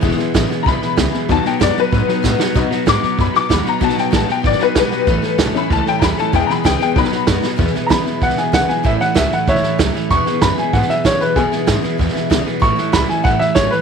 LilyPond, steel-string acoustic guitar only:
\new Staff \with { instrumentName = "Steel-string acoustic guitar" } { \time 4/4 \key e \major \tempo 4 = 191 <e, b, e gis b e'>8 <e gis b e'>8 <e, b, e gis b e'>8 <e gis b e'>8 <e gis b e'>8 <e gis b e'>8 <e, b, e gis b e'>8 <e gis b e'>8 | <b, fis b dis' fis'>8 <b dis' fis'>8 <b, fis b dis' fis'>8 <b dis' fis'>8 <fis b dis' fis'>8 <b dis' fis'>8 <b, fis b dis' fis'>8 <b dis' fis'>8 | <b, fis b dis' fis'>8 <b dis' fis'>8 <b, fis b dis' fis'>8 <b dis' fis'>8 <fis b dis' fis'>8 <b dis' fis'>8 <b, fis b dis' fis'>8 <b dis' fis'>8 | <b, fis b dis' fis'>8 <b dis' fis'>8 <b, fis b dis' fis'>8 <b dis' fis'>8 <fis b dis' fis'>8 <b dis' fis'>8 <b, fis b dis' fis'>8 <b dis' fis'>8 |
<a, e a cis' a'>8 <a cis' a'>8 <a, e a cis' a'>8 <a cis' a'>8 <e a cis' a'>8 <a cis' a'>8 <a, e a cis' a'>8 <a cis' a'>8 | <e, b, e gis b gis'>8 <e gis b gis'>8 <e, b, e gis b gis'>8 <e gis b gis'>8 <fis b dis' fis'>8 <b dis' fis'>8 <b, fis b dis' fis'>8 <b dis' fis'>8 | <e, b, e gis b e'>8 <e gis b e'>8 <e, b, e gis b e'>8 <e gis b e'>8 <e gis b e'>8 <e gis b e'>8 <e, b, e gis b e'>8 <e gis b e'>8 | <a, e a cis' e'>8 <a cis' e'>8 <a, e a cis' e'>8 <a cis' e'>8 <e a cis' e'>8 <a cis' e'>8 <a, e a cis' e'>8 <a cis' e'>8 |
<e, b, e gis b e'>8 <e gis b e'>8 <e, b, e gis b e'>8 <e gis b e'>8 <e gis b e'>8 <e gis b e'>8 <e, b, e gis b e'>8 <e gis b e'>8 | <e, b, e gis b e'>8 <e gis b e'>8 <e, b, e gis b e'>8 <e gis b e'>8 <e gis b e'>8 <e gis b e'>8 <e, b, e gis b e'>8 <e gis b e'>8 | <a, e a cis' e'>8 <a cis' e'>8 <a, e a cis' e'>8 <a cis' e'>8 <e a cis' e'>8 <a cis' e'>8 <a, e a cis' e'>8 <a cis' e'>8 | }